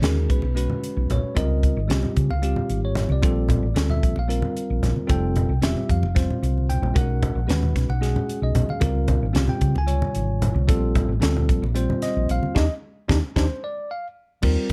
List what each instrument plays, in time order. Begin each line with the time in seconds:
0.02 fingered electric bass D#2, tine electric piano G#3 C#4 F#4 G#4 A#4, snare, closed hi-hat, high conga
0.29 fingered electric bass B1, tine electric piano B4, kick, closed hi-hat, low conga
0.42 fingered electric bass B1, muted conga
0.55 tine electric piano G#3 C#4 F#4 B4, closed hi-hat
0.70 high conga, low conga
0.84 closed hi-hat
0.97 fingered electric bass B1
1.10 fingered electric bass B1, tine electric piano C#5, closed hi-hat, low conga
1.23 muted fingered electric bass stroke
1.35 fingered electric bass C#2, tine electric piano G3 C4 F4 A#4 D#5, kick, closed hi-hat, muted conga
1.51 low conga
1.63 kick, closed hi-hat
1.77 fingered electric bass G#1
1.88 fingered electric bass C2, tine electric piano G3 C4 F4 G4, snare, closed hi-hat, high conga
2.03 low conga
2.16 fingered electric bass C#3, kick, closed hi-hat, low conga
2.30 fingered electric bass C#2, tine electric piano F5, muted conga
2.42 tine electric piano G3 C4 F4 G4, closed hi-hat
2.56 high conga, low conga
2.70 fingered electric bass G#1, closed hi-hat
2.85 tine electric piano C#5
2.95 snare, closed hi-hat, low conga
3.09 fingered electric bass C2, tine electric piano D5, high conga
3.22 fingered electric bass A#1, tine electric piano G3 C4 F4 A4, kick, closed hi-hat, muted conga
3.36 low conga
3.49 kick, closed hi-hat, low conga
3.63 fingered electric bass A1
3.75 fingered electric bass D2, tine electric piano G3 C4 F4 A4, snare, closed hi-hat, high conga
3.90 tine electric piano E5, low conga
4.03 fingered electric bass A#1, kick, closed hi-hat, low conga
4.16 fingered electric bass A#1, tine electric piano F5, muted conga
4.28 tine electric piano G3 C4 F4 A#4, closed hi-hat
4.42 high conga, low conga
4.57 closed hi-hat
4.70 fingered electric bass A#1
4.83 fingered electric bass A#1, snare, closed hi-hat, low conga
4.96 high conga
5.07 fingered electric bass F1, tine electric piano G3 C4 F4 A4 G5, kick, closed hi-hat, muted conga
5.36 closed hi-hat, low conga
5.49 fingered electric bass C2
5.62 fingered electric bass E1, tine electric piano G3 C4 F4 G4 E5, snare, closed hi-hat, high conga
5.77 low conga
5.89 fingered electric bass F2, tine electric piano F5, kick, closed hi-hat, low conga
6.03 fingered electric bass F1, muted conga, low conga
6.14 tine electric piano G3 C4 F4 C5, kick, snare, closed hi-hat
6.30 high conga, low conga
6.43 fingered electric bass C2, closed hi-hat
6.58 high conga
6.70 tine electric piano G5, closed hi-hat, low conga
6.82 fingered electric bass A#1, low conga
6.94 fingered electric bass B1, tine electric piano G#3 C#4 F#4 A#4 F#5, kick, closed hi-hat, muted conga
7.10 low conga
7.23 kick, closed hi-hat, low conga
7.35 fingered electric bass A#1
7.47 fingered electric bass D#2, tine electric piano G#3 C#4 F#4 B4, snare, closed hi-hat, high conga
7.63 low conga
7.76 fingered electric bass B1, kick, snare, closed hi-hat, low conga
7.89 fingered electric bass B1, tine electric piano F#5, muted conga
8.01 tine electric piano G#3 C#4 F#4 G#4, snare, closed hi-hat
8.16 high conga, low conga
8.29 closed hi-hat
8.42 fingered electric bass B1, tine electric piano D#5
8.55 fingered electric bass B1, closed hi-hat, low conga
8.68 tine electric piano F5, muted fingered electric bass stroke, high conga
8.80 fingered electric bass C#2, tine electric piano G3 C4 F4 A#4, kick, closed hi-hat, muted conga
8.95 low conga
9.08 kick, closed hi-hat, low conga
9.22 fingered electric bass G#1
9.33 fingered electric bass C2, tine electric piano G3 C4 F4 G4, snare, closed hi-hat, high conga
9.47 tine electric piano G5, low conga
9.61 fingered electric bass C#3, kick, closed hi-hat, low conga
9.75 fingered electric bass C#2, tine electric piano G#5, muted conga
9.86 tine electric piano C3 G3 F4 C#5, closed hi-hat
10.02 high conga, low conga
10.15 fingered electric bass G#1, closed hi-hat
10.42 closed hi-hat, low conga
10.54 fingered electric bass C2, high conga
10.67 fingered electric bass A#1, tine electric piano G3 C4 F4 A4, kick, closed hi-hat, muted conga
10.83 low conga
10.95 kick, closed hi-hat, low conga
11.08 fingered electric bass A1
11.20 fingered electric bass D2, tine electric piano G3 C4 F4 A4, snare, closed hi-hat, high conga
11.36 low conga
11.49 fingered electric bass A#1, kick, closed hi-hat, low conga
11.62 fingered electric bass A#1, muted conga
11.74 tine electric piano G3 C4 F4 C5, closed hi-hat
11.90 high conga, low conga
12.02 tine electric piano D#5, snare, closed hi-hat
12.16 fingered electric bass A#1
12.29 fingered electric bass A#1, tine electric piano F5, closed hi-hat
12.43 muted fingered electric bass stroke, high conga
12.55 fingered electric bass D#2, tine electric piano D4 D#4 G4 D#5, kick, snare, muted conga
13.08 fingered electric bass D#2, tine electric piano D4 D#4 G4, kick, snare, muted conga
13.36 fingered electric bass D#2, tine electric piano D4 D#4 G4 C5, kick, snare, muted conga
13.64 tine electric piano D5
13.91 tine electric piano F5
14.42 fingered electric bass D#2, tine electric piano G3 C4 F4 A#4, kick, crash
14.69 fingered electric bass D2, closed hi-hat